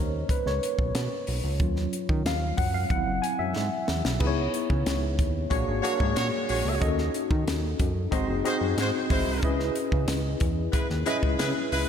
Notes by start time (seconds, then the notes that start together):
Already playing: D#2 A#3 C#4 D#4 A#4 C5 C#5 D#5
0.29 B4, kick, closed hi-hat
0.46 C#2 C#5, snare
0.63 closed hi-hat
0.78 B1, kick
0.95 B2, snare, closed hi-hat
1.27 B1, open hi-hat
1.44 C#2
1.59 D#2 F#3 C#4 F4, kick, closed hi-hat
1.76 snare
1.93 closed hi-hat
2.09 D#3, kick
2.25 D#2 F5, snare, closed hi-hat
2.57 F#2 F#5, kick, open hi-hat
2.74 F5
2.90 G#1 F#3 C4 E4 F#5, kick, closed hi-hat
3.06 F#1
3.22 G#5, closed hi-hat
3.39 F#2 E5
3.56 G#2, snare
3.88 E2, snare
4.05 B1, snare
4.20 C#2 B3 D#4 E4 G#4 B4, kick, crash
4.27 C#5
4.54 closed hi-hat
4.70 C#3, kick
4.86 C#2, snare, closed hi-hat
5.19 D#2, kick, closed hi-hat
5.50 A#1 G#3 A#3 D4 F#4 G#4 C#5, kick, closed hi-hat
5.68 G#1
5.82 G#3 A#3 D4 F#4 G#4 C#5, closed hi-hat
6.00 G#2, kick
6.16 A#2 G#3 F#4 C#5, snare, closed hi-hat
6.49 A#1 G#3 F#4 C#5, open hi-hat
6.65 C#2
6.80 D#2 C#4 D#4 F#4 A4 D#5, kick, closed hi-hat
6.98 snare
7.14 closed hi-hat
7.31 D#3, kick
7.47 D#2, snare, closed hi-hat
7.79 F#2, kick, closed hi-hat
8.11 G#1 G#3 C4 D#4 F#4 G#4 C5 D#5, kick, closed hi-hat
8.28 F#1
8.44 G#3 C4 D#4 F#4 G#4 C5 D#5, closed hi-hat
8.61 F#2
8.77 G#2 G#3 F#4 C5, snare, closed hi-hat
9.10 G#1 G#3 E4 C5, kick, open hi-hat
9.26 C2
9.43 C#2 C#4 E4 G#4 B4 D#5, kick, closed hi-hat
9.60 snare
9.76 closed hi-hat
9.92 C#3, kick
10.08 C#2, snare, closed hi-hat
10.40 E2, kick, closed hi-hat
10.72 G#3 E4 B4, kick, closed hi-hat
10.90 D#2, snare
11.06 G#3 C#4 E4 G#4 B4 D#5, closed hi-hat
11.23 C#2, kick
11.39 C#3 G#3 E4 B4, snare, closed hi-hat
11.72 C#2 G#3 E4 B4, open hi-hat